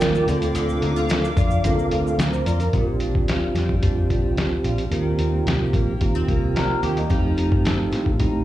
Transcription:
0.00 0.22 D#2 medium
0.00 0.28 D#3 medium
0.00 0.33 G3 medium
0.00 0.27 A#3 medium
0.00 1.09 A#3 medium
0.00 2.70 A#3 medium
0.00 0.28 D4 medium
0.00 0.28 F4 medium
0.00 0.29 A#4 loud
0.00 0.26 D5 medium
0.00 0.26 G5 medium
0.00 0.25 D6 medium
0.00 snare loud
0.00 closed hi-hat medium
0.00 shaker medium
0.15 shaker soft
0.27 0.50 D2 medium
0.27 0.55 D3 medium
0.27 1.29 C4 medium
0.27 0.35 C#4 medium
0.27 1.30 F4 medium
0.27 1.30 A4 loud
0.27 2.71 F5 medium
0.27 2.71 D6 medium
0.27 closed hi-hat medium
0.27 shaker medium
0.35 1.33 D4 medium
0.42 closed hi-hat soft
0.42 shaker soft
0.55 0.77 D2 loud
0.55 4.06 D3 medium
0.55 closed hi-hat medium
0.55 shaker medium
0.69 shaker soft
0.82 1.26 D2 loud
0.82 0.96 D#4 medium
0.82 closed hi-hat medium
0.96 1.36 F4 soft
0.96 shaker soft
1.09 1.64 A#3 medium
1.09 snare loud
1.09 closed hi-hat loud
1.09 shaker medium
1.24 shaker medium
1.36 1.59 F2 medium
1.36 1.92 F4 medium
1.36 1.63 D5 medium
1.36 kick loud
1.36 closed hi-hat medium
1.36 shaker medium
1.51 shaker soft
1.64 1.86 D3 loud
1.64 2.19 A#3 medium
1.64 2.66 C4 medium
1.64 1.71 C#4 medium
1.64 2.20 F4 medium
1.64 2.20 A4 loud
1.64 2.16 F5 medium
1.64 kick medium
1.64 closed hi-hat loud
1.64 shaker medium
1.71 2.23 D4 medium
1.79 shaker soft
1.91 2.13 D2 medium
1.91 2.46 F4 medium
1.91 closed hi-hat medium
2.07 shaker soft
2.19 2.41 D2 medium
2.19 3.01 A#3 medium
2.19 2.70 A#5 medium
2.19 snare loud
2.19 closed hi-hat medium
2.19 shaker medium
2.33 2.46 C5 medium
2.33 shaker soft
2.46 2.68 F2 medium
2.46 3.28 F4 medium
2.46 2.60 F4 medium
2.46 2.59 D5 medium
2.46 closed hi-hat medium
2.46 shaker soft
2.60 2.72 D4 medium
2.60 2.86 A#4 medium
2.60 closed hi-hat soft
2.60 shaker soft
2.73 3.15 A#1 loud
2.73 4.92 A#2 medium
2.73 3.75 C4 medium
2.73 3.75 D4 medium
2.73 3.75 F4 medium
2.73 3.76 G4 medium
2.73 kick medium
2.73 closed hi-hat medium
3.00 3.82 D4 soft
3.00 closed hi-hat medium
3.15 3.48 D2 medium
3.15 kick medium
3.28 4.64 F4 medium
3.28 snare loud
3.28 closed hi-hat medium
3.55 3.77 F2 medium
3.55 4.10 G3 medium
3.55 snare soft
3.55 closed hi-hat medium
3.69 kick medium
3.81 4.05 F2 medium
3.81 4.84 C4 medium
3.81 4.84 D4 medium
3.81 4.36 D4 medium
3.81 4.84 F4 medium
3.81 4.85 G4 medium
3.81 kick medium
3.81 closed hi-hat medium
4.10 4.36 A#1 medium
4.10 5.73 G3 soft
4.10 kick medium
4.10 closed hi-hat medium
4.37 4.59 D2 medium
4.37 4.97 D4 medium
4.37 snare medium
4.37 closed hi-hat medium
4.64 4.86 A#1 medium
4.64 4.98 F4 medium
4.64 closed hi-hat medium
4.78 closed hi-hat soft
4.90 5.13 D#2 loud
4.90 7.13 D#3 medium
4.90 5.92 A#3 medium
4.90 5.93 C4 medium
4.90 5.93 F4 medium
4.90 5.94 G4 medium
4.90 closed hi-hat medium
5.19 5.41 D#2 medium
5.19 6.01 C4 soft
5.19 closed hi-hat medium
5.46 5.68 C2 medium
5.46 6.81 G4 medium
5.46 snare loud
5.46 closed hi-hat medium
5.73 5.95 A#1 medium
5.73 6.00 A#3 medium
5.73 kick medium
5.73 closed hi-hat medium
5.99 6.23 D#2 medium
5.99 7.02 A#3 medium
5.99 6.15 A#3 medium
5.99 7.02 C4 medium
5.99 7.03 F4 medium
5.99 7.03 G4 medium
5.99 kick medium
5.99 closed hi-hat loud
6.15 6.54 C4 medium
6.28 6.72 C2 medium
6.28 7.09 A#3 medium
6.28 kick medium
6.28 closed hi-hat medium
6.55 7.91 C4 medium
6.55 6.82 D4 medium
6.55 6.81 A#4 medium
6.55 snare medium
6.55 closed hi-hat medium
6.83 7.05 D#2 medium
6.83 6.96 A#3 medium
6.83 7.16 G4 medium
6.83 6.96 G4 medium
6.83 closed hi-hat medium
6.97 7.23 G3 medium
6.97 7.23 D#4 medium
6.97 closed hi-hat soft
7.09 7.52 F2 loud
7.09 8.44 F3 medium
7.09 8.11 A3 medium
7.09 8.11 C4 medium
7.09 8.12 D#4 medium
7.09 8.12 G4 medium
7.09 kick medium
7.09 closed hi-hat medium
7.37 8.19 D#4 soft
7.37 closed hi-hat medium
7.52 7.84 G2 medium
7.52 kick loud
7.65 8.44 A4 medium
7.65 snare loud
7.65 closed hi-hat medium
7.92 8.14 A2 medium
7.92 8.44 C4 medium
7.92 snare soft
7.92 closed hi-hat medium
8.06 kick medium
8.18 8.42 A2 medium
8.18 8.44 A3 medium
8.18 8.44 C4 medium
8.18 8.44 D#4 medium
8.18 8.44 G4 medium
8.18 kick medium
8.18 closed hi-hat loud

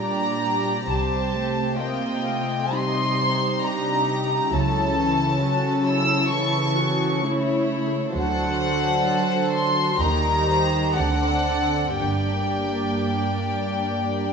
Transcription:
0.00 0.90 A#2 soft
0.00 0.88 G3 soft
0.00 0.88 D4 soft
0.00 0.88 G4 soft
0.00 0.87 D5 soft
0.00 0.90 A#5 medium
0.88 1.74 C2 soft
0.88 4.48 C3 soft
0.88 1.31 G3 soft
0.88 3.59 C4 soft
0.88 1.75 G4 soft
0.88 1.76 C5 soft
0.88 1.80 A5 medium
1.35 1.79 A3 soft
1.78 2.27 A#3 soft
1.78 2.74 F4 soft
1.78 2.73 D#5 soft
1.78 2.73 G5 medium
2.27 2.75 A3 soft
2.74 4.48 G3 soft
2.74 4.51 D#4 soft
2.74 3.19 D#5 soft
2.74 3.64 C6 medium
3.20 3.63 C5 soft
3.62 4.07 D4 soft
3.62 4.51 G4 soft
3.62 4.52 A#5 medium
4.06 4.51 D#4 medium
4.50 5.38 C#2 soft
4.50 8.16 C#3 soft
4.50 4.96 F#3 soft
4.50 6.28 C#4 medium
4.50 5.39 E4 soft
4.50 5.40 A4 medium
4.50 5.88 A5 medium
4.96 5.41 E3 soft
5.41 6.31 F#3 soft
5.41 5.86 F#4 medium
5.41 7.19 A4 soft
5.86 6.30 E4 soft
5.86 6.31 E6 medium
6.30 7.23 E3 soft
6.30 7.22 C#4 soft
6.30 6.76 E4 medium
6.30 7.21 C#6 medium
6.76 7.23 F#4 medium
7.23 8.16 A3 soft
7.23 8.16 E4 soft
7.23 8.16 E4 medium
7.23 8.16 C#5 soft
8.14 9.02 D2 soft
8.14 9.97 D3 soft
8.14 9.97 F#3 soft
8.14 9.03 F#4 soft
8.14 9.97 A4 soft
8.14 9.97 C5 soft
8.14 9.49 F#5 medium
9.08 10.00 F#4 soft
9.54 10.00 C6 medium
10.00 10.93 D#2 soft
10.00 10.97 D#3 soft
10.00 10.97 G3 soft
10.00 10.97 D#4 soft
10.00 10.95 G4 soft
10.00 10.49 A#4 soft
10.00 10.97 A#5 medium
10.49 10.96 C5 soft
10.96 11.95 D2 soft
10.96 11.99 D3 soft
10.96 11.99 C4 soft
10.96 11.97 D4 soft
10.96 11.98 A4 soft
10.96 11.98 D5 soft
10.96 11.98 F#5 medium
11.97 12.99 G1 soft
11.97 14.33 G2 soft
11.97 14.33 A#3 soft
11.97 14.33 D4 soft
11.97 14.33 G4 soft
11.97 14.33 D5 soft
11.97 14.33 G5 soft

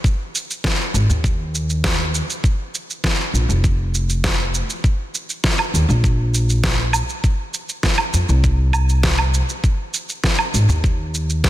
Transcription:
0.04 kick loud
0.04 shaker soft
0.35 shaker medium
0.50 shaker soft
0.64 kick loud
0.64 snare loud
0.64 shaker soft
0.94 1.03 G#1 medium
0.94 shaker medium
1.09 2.19 D#2 medium
1.09 shaker soft
1.24 kick loud
1.24 shaker soft
1.55 shaker medium
1.70 shaker soft
1.84 kick loud
1.84 snare loud
1.84 shaker soft
2.15 shaker medium
2.30 shaker soft
2.44 kick loud
2.44 shaker soft
2.75 shaker medium
2.90 shaker soft
3.04 kick loud
3.04 snare loud
3.04 shaker soft
3.33 3.43 A#1 medium
3.33 shaker medium
3.49 4.59 F1 medium
3.49 shaker soft
3.64 kick loud
3.64 shaker soft
3.95 shaker medium
4.10 shaker soft
4.24 kick medium
4.24 snare medium
4.24 shaker soft
4.55 shaker medium
4.70 shaker soft
4.84 kick medium
4.84 shaker soft
5.15 shaker medium
5.30 shaker soft
5.44 kick loud
5.44 snare medium
5.44 shaker soft
5.59 low woodblock medium
5.74 5.83 D#2 medium
5.74 shaker medium
5.89 6.99 A#1 medium
5.89 shaker soft
6.04 kick loud
6.04 shaker soft
6.34 shaker medium
6.50 shaker soft
6.64 kick loud
6.64 snare medium
6.64 shaker soft
6.93 low woodblock medium
6.93 shaker medium
7.09 shaker soft
7.24 kick loud
7.24 shaker soft
7.54 shaker medium
7.69 shaker soft
7.83 kick medium
7.83 snare medium
7.83 shaker soft
7.98 low woodblock medium
8.13 8.23 F2 medium
8.13 shaker medium
8.29 9.39 C2 medium
8.29 shaker soft
8.44 kick loud
8.44 shaker soft
8.73 low woodblock medium
8.73 shaker medium
8.89 shaker soft
9.03 kick medium
9.03 snare medium
9.03 shaker soft
9.18 low woodblock medium
9.34 shaker medium
9.49 shaker soft
9.64 kick loud
9.64 shaker soft
9.94 shaker medium
10.09 shaker soft
10.24 kick medium
10.24 snare medium
10.24 shaker soft
10.39 low woodblock medium
10.54 10.63 G#1 medium
10.54 shaker medium
10.69 11.49 D#2 medium
10.69 shaker soft
10.84 kick loud
10.84 shaker soft
11.15 shaker medium
11.30 shaker soft
11.44 kick medium
11.44 snare medium
11.44 shaker soft

